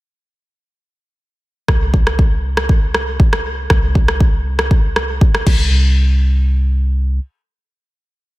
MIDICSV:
0, 0, Header, 1, 3, 480
1, 0, Start_track
1, 0, Tempo, 504202
1, 1604, Time_signature, 4, 2, 24, 8
1, 7985, End_track
2, 0, Start_track
2, 0, Title_t, "FM bass"
2, 0, Program_c, 0, 39
2, 1603, Note_on_c, 0, 36, 84
2, 3501, Note_off_c, 0, 36, 0
2, 3524, Note_on_c, 0, 36, 86
2, 5197, Note_off_c, 0, 36, 0
2, 5203, Note_on_c, 0, 36, 93
2, 6845, Note_off_c, 0, 36, 0
2, 7985, End_track
3, 0, Start_track
3, 0, Title_t, "Drums"
3, 1603, Note_on_c, 9, 36, 108
3, 1603, Note_on_c, 9, 37, 87
3, 1698, Note_off_c, 9, 36, 0
3, 1699, Note_off_c, 9, 37, 0
3, 1843, Note_on_c, 9, 36, 77
3, 1939, Note_off_c, 9, 36, 0
3, 1969, Note_on_c, 9, 37, 75
3, 2064, Note_off_c, 9, 37, 0
3, 2083, Note_on_c, 9, 36, 112
3, 2179, Note_off_c, 9, 36, 0
3, 2449, Note_on_c, 9, 37, 93
3, 2544, Note_off_c, 9, 37, 0
3, 2564, Note_on_c, 9, 36, 106
3, 2659, Note_off_c, 9, 36, 0
3, 2804, Note_on_c, 9, 37, 75
3, 2899, Note_off_c, 9, 37, 0
3, 3044, Note_on_c, 9, 36, 112
3, 3139, Note_off_c, 9, 36, 0
3, 3168, Note_on_c, 9, 37, 87
3, 3264, Note_off_c, 9, 37, 0
3, 3523, Note_on_c, 9, 36, 113
3, 3523, Note_on_c, 9, 37, 90
3, 3618, Note_off_c, 9, 37, 0
3, 3619, Note_off_c, 9, 36, 0
3, 3763, Note_on_c, 9, 36, 81
3, 3859, Note_off_c, 9, 36, 0
3, 3888, Note_on_c, 9, 37, 79
3, 3983, Note_off_c, 9, 37, 0
3, 4003, Note_on_c, 9, 36, 120
3, 4098, Note_off_c, 9, 36, 0
3, 4368, Note_on_c, 9, 37, 89
3, 4463, Note_off_c, 9, 37, 0
3, 4483, Note_on_c, 9, 36, 112
3, 4578, Note_off_c, 9, 36, 0
3, 4724, Note_on_c, 9, 37, 79
3, 4819, Note_off_c, 9, 37, 0
3, 4963, Note_on_c, 9, 36, 117
3, 5058, Note_off_c, 9, 36, 0
3, 5089, Note_on_c, 9, 37, 90
3, 5184, Note_off_c, 9, 37, 0
3, 5203, Note_on_c, 9, 36, 107
3, 5204, Note_on_c, 9, 49, 81
3, 5298, Note_off_c, 9, 36, 0
3, 5299, Note_off_c, 9, 49, 0
3, 7985, End_track
0, 0, End_of_file